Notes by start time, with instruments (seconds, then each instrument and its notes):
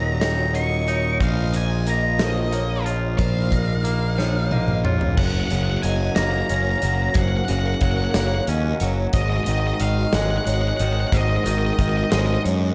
Already playing: picked electric bass D#1, clean electric guitar D#2 F#3 D#4, analog synth pad C#4 F#4 D#5, vibraphone A#4, lead electric guitar A#5
0.21 clean electric guitar D#3, vibraphone C#5, lead electric guitar A#5, snare, closed hi-hat
0.54 clean electric guitar F#3, vibraphone D#5, lead electric guitar C#6, closed hi-hat
0.88 clean electric guitar D#4, vibraphone C#5, closed hi-hat
1.20 picked electric bass A#1, clean electric guitar A#2, analog synth pad A#3 F4, lead electric guitar F5, kick, closed hi-hat
1.53 lead electric guitar G#5, closed hi-hat
1.86 clean electric guitar A#3, vibraphone D#5, lead electric guitar A#5, closed hi-hat
2.19 clean electric guitar F3, lead electric guitar D#5, snare, closed hi-hat
2.52 clean electric guitar A#3, vibraphone C#5, closed hi-hat
2.86 clean electric guitar F4, closed hi-hat
3.18 picked electric bass A#1, clean electric guitar A#2, analog synth pad D#4, vibraphone C5, lead electric guitar F5, kick, closed hi-hat
3.52 vibraphone A#4, kick, closed hi-hat
3.84 clean electric guitar A#3, closed hi-hat
4.18 clean electric guitar F3, vibraphone C#5, snare
4.51 clean electric guitar A#3, vibraphone D#5, high tom
4.68 mid tom
4.84 clean electric guitar F4, vibraphone C#5, mid tom
5.01 floor tom
5.17 picked electric bass F#1, clean electric guitar F#2, analog synth pad A#3 F#4 F#5, lead electric guitar F#5, kick, crash
5.26 lead electric guitar F#5
5.33 lead electric guitar F#5
5.40 lead electric guitar F#5
5.47 picked electric bass F#1, lead electric guitar F#5, closed hi-hat
5.51 clean electric guitar C#3, lead electric guitar F#5
5.63 lead electric guitar F#5
5.71 lead electric guitar F#5
5.77 lead electric guitar F#5
5.83 picked electric bass F#1, clean electric guitar F#3, vibraphone D#5, lead electric guitar G#5, closed hi-hat
6.15 picked electric bass F#1, clean electric guitar A#3, lead electric guitar A#5, snare, closed hi-hat
6.23 lead electric guitar A#5
6.31 lead electric guitar A#5
6.39 lead electric guitar A#5
6.47 picked electric bass F#1, clean electric guitar C#4, vibraphone C#5, lead electric guitar A#5, closed hi-hat
6.54 lead electric guitar A#5
6.63 lead electric guitar A#5
6.70 lead electric guitar A#5
6.79 picked electric bass F#1, lead electric guitar A#5, closed hi-hat
6.83 clean electric guitar F#3, lead electric guitar A#5
6.95 lead electric guitar A#5
7.03 lead electric guitar A#5
7.10 lead electric guitar A#5
7.14 picked electric bass F#1, clean electric guitar F#2, vibraphone C5, lead electric guitar F#5, kick, closed hi-hat
7.22 lead electric guitar F#5
7.29 lead electric guitar F#5
7.37 lead electric guitar F#5
7.45 clean electric guitar C#3, lead electric guitar F#5, closed hi-hat
7.49 picked electric bass F#1, vibraphone A#4, lead electric guitar F#5
7.59 lead electric guitar F#5
7.67 lead electric guitar F#5
7.74 lead electric guitar F#5
7.81 picked electric bass F#1, clean electric guitar F#3, lead electric guitar F#5, kick, closed hi-hat
7.91 lead electric guitar F#5
7.97 lead electric guitar F#5
8.05 lead electric guitar F#5
8.11 picked electric bass F#1, clean electric guitar A#3, vibraphone C#5, lead electric guitar F#5, snare, closed hi-hat
8.20 lead electric guitar F#5
8.27 lead electric guitar F#5
8.35 lead electric guitar F#5
8.47 picked electric bass D#2, clean electric guitar C#4, vibraphone D#5, closed hi-hat
8.80 picked electric bass F#1, clean electric guitar F#3, vibraphone C#5, closed hi-hat
9.13 picked electric bass G#1, clean electric guitar G#2, analog synth pad G#3 D#5, lead electric guitar D#5, kick, closed hi-hat
9.21 lead electric guitar D#5
9.30 lead electric guitar D#5
9.37 lead electric guitar D#5
9.44 picked electric bass G#1, lead electric guitar D#5, closed hi-hat
9.48 clean electric guitar D#3, lead electric guitar D#5
9.60 lead electric guitar D#5
9.67 lead electric guitar D#5
9.74 lead electric guitar D#5
9.80 picked electric bass G#1, clean electric guitar D#3, vibraphone D#5, lead electric guitar F5, closed hi-hat
10.13 picked electric bass G#1, clean electric guitar G#3, lead electric guitar F#5, snare, closed hi-hat
10.22 lead electric guitar F#5
10.31 lead electric guitar F#5
10.37 lead electric guitar F#5
10.45 picked electric bass G#1, vibraphone C#5, lead electric guitar F#5, closed hi-hat
10.54 lead electric guitar F#5
10.62 lead electric guitar F#5
10.68 lead electric guitar F#5
10.77 picked electric bass G#1, clean electric guitar D#3, lead electric guitar F#5, closed hi-hat
10.84 lead electric guitar F#5
10.93 lead electric guitar F#5
11.00 lead electric guitar F#5
11.08 lead electric guitar F#5
11.12 picked electric bass G#1, clean electric guitar G#2, vibraphone C5, lead electric guitar D#5, kick, closed hi-hat
11.21 lead electric guitar D#5
11.30 lead electric guitar D#5
11.36 lead electric guitar D#5
11.44 picked electric bass G#1, clean electric guitar D#3, vibraphone A#4, lead electric guitar D#5, closed hi-hat
11.52 lead electric guitar D#5
11.58 lead electric guitar D#5
11.66 lead electric guitar D#5
11.73 lead electric guitar D#5
11.79 picked electric bass G#1, clean electric guitar D#3, lead electric guitar D#5, kick, closed hi-hat
11.89 lead electric guitar D#5
11.97 lead electric guitar D#5
12.04 lead electric guitar D#5
12.11 picked electric bass G#1, clean electric guitar G#3, vibraphone C5, lead electric guitar D#5, snare, closed hi-hat
12.19 lead electric guitar D#5
12.26 lead electric guitar D#5
12.34 lead electric guitar D#5
12.44 picked electric bass F#2, vibraphone C#5, closed hi-hat